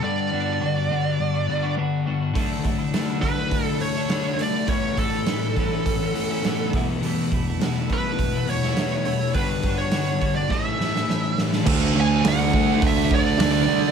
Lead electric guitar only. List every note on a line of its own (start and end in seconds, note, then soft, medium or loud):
0.04 1.74 D5 medium
3.22 3.65 B4 medium
3.65 3.77 A4 medium
3.81 4.41 C#5 medium
4.42 4.69 D5 medium
4.69 4.96 C#5 medium
4.98 6.69 A4 medium
7.93 8.51 B4 medium
8.49 9.38 C#5 medium
9.34 9.75 B4 medium
9.78 10.33 C#5 medium
10.35 10.51 D5 medium
10.51 11.38 E5 medium
12.01 12.25 G#5 medium
12.28 12.80 F#5 medium
12.87 13.12 E5 medium
13.15 13.91 D5 medium